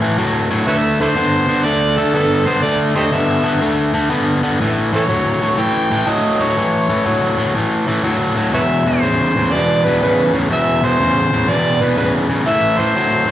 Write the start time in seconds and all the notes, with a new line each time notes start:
0.01 A2 E3
0.18 A2 F#3
0.51 A2 F#3
0.67 D3 A3 B4 C#5 E5
1.00 D3 A3 E4 A4 C5
1.16 D3 B3
1.49 D3 B3
1.65 D3 A3 D5
1.97 D3 A3 A4
2.14 D3 B3 A4
2.45 D3 B3 C5
2.62 D3 A3 D5
2.95 D3 A3 G4 C5 D#5
3.12 D3 B3 E5
3.44 D3 B3
3.61 D3 A3
3.94 D3 A3
4.10 D3 B3
4.43 D3 B3
4.61 A2 E3
4.93 A2 E3 A4 C#5
5.09 A2 F#3
5.41 A2 F#3
5.58 A2 E3 G5
5.91 A2 E3 G5
6.07 A2 F#3 D#5
6.40 A2 F#3 C#5
6.57 A2 E3
6.89 A2 E3
7.05 A2 F#3
7.38 A2 F#3
7.55 A2 E3
7.87 A2 E3
8.04 A2 F#3
8.36 A2 F#3
8.52 E2 B2 B4 C#5 E5
8.85 E2 B2 C5
9.03 E2 C#3
9.36 E2 C#3
9.53 E2 B2 D5
9.85 E2 B2 B4
10.02 E2 C#3 B4
10.33 E2 C#3
10.50 E2 B2 E5
10.83 E2 B2 C5
10.99 E2 C#3
11.33 E2 C#3
11.49 E2 B2 D5
11.81 E2 B2 B4
11.97 E2 C#3 B4
12.29 E2 C#3
12.46 A2 E3 E5
12.78 A2 E3 C5
12.96 A2 F#3
13.27 A2 F#3